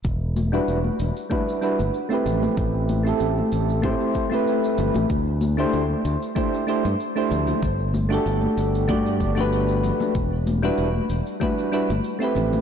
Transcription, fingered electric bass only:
X:1
M:4/4
L:1/16
Q:"Swing 16ths" 1/4=95
K:Em
V:1 name="Fingered electric bass" clef=bass
E,,,3 z E,,, z E,,, z4 G,,, z2 A,,, z | A,,,3 z A,,, z A,,,2 A,, z4 z G,,, A,,, | D,,3 z D,, z D,, z4 G,, z2 D,, z | G,,,3 z G,,, z G,,,2 G,,2 G,,,4 z2 |
E,,,3 z E,,, z E,,, z4 G,,, z2 A,,, z |]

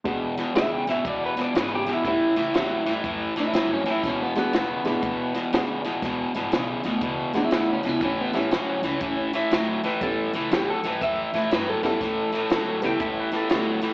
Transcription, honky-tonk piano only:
X:1
M:4/4
L:1/8
Q:"Swing" 1/4=120
K:A
V:1 name="Honky-tonk piano"
[G,B,DF] z [G,B,DF] z4 z | [=G,B,CE] z [G,B,CE] z4 z | z [G,B,DF] z [G,B,DE] z2 [G,B,DF] z | z4 z [G,B,DF]3 |
z [=G,B,CE] z6 | [=G,B,CE] z6 [G,B,CE] | z3 [=G,B,CE]3 [G,B,CE] z |]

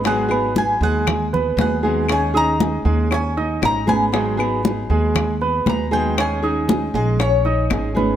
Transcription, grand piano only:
X:1
M:4/4
L:1/8
Q:1/4=118
K:G#m
V:1 name="Grand piano"
[G,Gg] [B,Bb]2 [G,Gg]2 [B,Bb]2 [G,Gg] | [Ccc'] [Ddd']2 [G,Gg] [Ccc'] [Ddd']2 [B,Bb] | [G,Gg] [B,Bb]2 [G,Gg]2 [B,Bb]2 [G,Gg] | [Ccc'] [Ddd']2 [G,Gg] [Ccc'] [Ddd']2 [B,Bb] |]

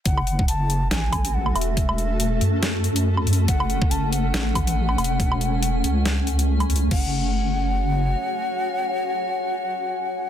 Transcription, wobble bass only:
X:1
M:4/4
L:1/8
Q:"Swing 16ths" 1/4=140
K:F#m
V:1 name="Wobble bass" clef=bass
F,,,2 F,,,2 A,,,3 E,,,- | E,,,3 F,,4 F,, | F,,,2 F,,,2 A,,,3 E,,,- | E,,,3 C,,4 C,, |
F,,,6 z2 | z8 |]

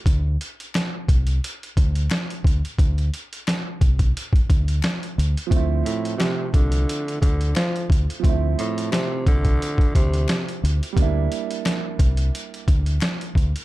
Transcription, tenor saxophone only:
X:1
M:4/4
L:1/16
Q:"Swing 16ths" 1/4=88
K:Cmix
V:1 name="Tenor saxophone" clef=bass
z16 | z16 | z2 A,,2 C,2 D,4 D,2 F,2 z2 | z2 A,,2 C,2 D,4 C,3 z3 |
z16 |]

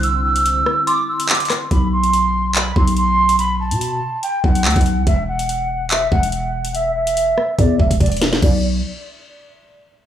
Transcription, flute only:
X:1
M:4/4
L:1/8
Q:1/4=143
K:Em
V:1 name="Flute"
e' e'3 d' e' d' z | b c'3 b c' c'2 | b a3 g f3 | e f3 e f f2 |
e e3 d e d z | d z6 z |]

